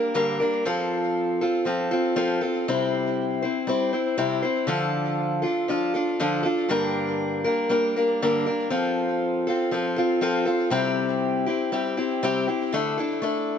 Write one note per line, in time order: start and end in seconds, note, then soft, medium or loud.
0.00 0.14 G3 soft
0.00 0.14 A#3 soft
0.00 0.14 D4 medium
0.00 0.14 A#4 medium
0.14 0.40 G2 medium
0.14 0.40 D3 medium
0.14 0.40 G3 medium
0.14 0.40 A#3 medium
0.14 0.40 D4 medium
0.14 0.39 A#4 medium
0.40 0.65 G3 soft
0.40 0.66 A#3 medium
0.40 0.66 D4 medium
0.40 0.65 A#4 medium
0.65 1.41 F3 medium
0.65 1.43 C4 medium
0.65 1.41 F4 medium
0.65 1.40 A4 loud
1.41 1.65 C4 soft
1.41 1.65 F4 soft
1.41 1.66 A4 medium
1.65 1.91 F3 medium
1.65 1.91 C4 medium
1.65 1.90 F4 medium
1.65 1.90 A4 medium
1.91 2.15 C4 soft
1.91 2.15 F4 medium
1.91 2.16 A4 medium
2.16 2.41 F3 medium
2.16 2.42 C4 medium
2.16 2.42 F4 medium
2.16 2.40 A4 medium
2.41 2.67 C4 soft
2.41 2.68 F4 medium
2.41 2.67 A4 medium
2.68 3.43 C3 medium
2.68 3.43 G3 medium
2.68 3.43 C4 medium
2.68 3.42 E4 medium
2.68 3.41 C5 medium
3.42 3.67 C4 soft
3.42 3.68 E4 soft
3.42 3.68 C5 medium
3.67 3.93 G3 medium
3.67 3.93 C4 medium
3.67 3.93 E4 medium
3.67 3.92 C5 medium
3.93 4.17 C4 soft
3.93 4.17 E4 medium
3.93 4.17 C5 medium
4.18 4.43 C3 medium
4.18 4.43 G3 medium
4.18 4.43 C4 medium
4.18 4.42 E4 medium
4.18 4.41 C5 medium
4.42 4.67 C4 soft
4.42 4.68 E4 medium
4.42 4.68 C5 medium
4.67 5.43 D3 medium
4.67 5.44 F3 medium
4.67 5.44 D4 medium
4.67 5.42 F4 medium
4.67 5.41 A4 medium
5.42 5.68 D4 soft
5.42 5.69 F4 soft
5.42 5.68 A4 medium
5.68 5.94 F3 medium
5.68 5.94 D4 medium
5.68 5.94 F4 medium
5.68 5.93 A4 medium
5.94 6.19 D4 soft
5.94 6.19 F4 medium
5.94 6.19 A4 medium
6.20 6.45 D3 medium
6.20 6.45 F3 medium
6.20 6.45 D4 medium
6.20 6.43 F4 medium
6.20 6.42 A4 medium
6.43 6.69 D4 soft
6.43 6.70 F4 medium
6.43 6.69 A4 medium
6.69 7.45 G2 medium
6.69 7.45 D3 medium
6.69 7.46 G3 medium
6.69 7.44 A#3 medium
6.69 7.44 D4 medium
6.69 7.43 A#4 medium
7.44 7.68 G3 soft
7.44 7.69 A#3 soft
7.44 7.70 D4 soft
7.44 7.70 A#4 medium
7.69 7.95 G3 medium
7.69 7.95 A#3 medium
7.69 7.96 D4 medium
7.69 7.95 A#4 medium
7.96 8.21 G3 medium
7.96 8.21 A#3 medium
7.96 8.21 D4 medium
7.96 8.21 A#4 medium
8.22 8.47 G2 medium
8.22 8.47 D3 medium
8.22 8.47 G3 medium
8.22 8.46 A#3 medium
8.22 8.45 D4 medium
8.22 8.45 A#4 medium
8.46 8.70 G3 soft
8.46 8.70 A#3 medium
8.46 8.71 D4 medium
8.46 8.71 A#4 medium
8.70 9.46 F3 medium
8.70 9.49 C4 medium
8.70 9.47 F4 medium
8.70 9.46 A4 medium
9.47 9.71 C4 soft
9.47 9.72 F4 soft
9.47 9.72 A4 medium
9.71 9.97 F3 medium
9.71 9.97 C4 medium
9.71 9.97 F4 medium
9.71 9.95 A4 medium
9.96 10.21 C4 soft
9.96 10.21 F4 medium
9.96 10.22 A4 medium
10.21 10.47 F3 medium
10.21 10.46 C4 medium
10.21 10.45 F4 medium
10.21 10.44 A4 medium
10.45 10.70 C4 soft
10.45 10.71 F4 medium
10.45 10.71 A4 medium
10.70 11.47 C3 medium
10.70 11.47 G3 medium
10.70 11.47 C4 medium
10.70 11.46 E4 medium
10.70 11.45 G4 medium
11.46 11.71 C4 soft
11.46 11.72 E4 soft
11.46 11.72 G4 medium
11.72 11.97 G3 medium
11.72 11.98 C4 medium
11.72 11.96 E4 medium
11.72 11.96 G4 medium
11.97 12.23 C4 soft
11.97 12.23 E4 medium
11.97 12.22 G4 medium
12.23 12.48 C3 medium
12.23 12.48 G3 medium
12.23 12.48 C4 medium
12.23 12.47 E4 medium
12.23 12.46 G4 medium
12.48 12.73 C4 soft
12.48 12.73 E4 medium
12.48 12.73 G4 medium
12.73 12.98 D3 medium
12.73 12.98 A3 medium
12.73 12.98 D4 medium
12.73 12.98 E4 medium
12.73 12.96 A4 medium
12.97 13.22 D4 medium
12.97 13.22 E4 medium
12.97 13.22 A4 medium
13.22 13.58 A3 medium
13.22 13.58 D4 medium
13.22 13.58 E4 medium
13.22 13.58 A4 medium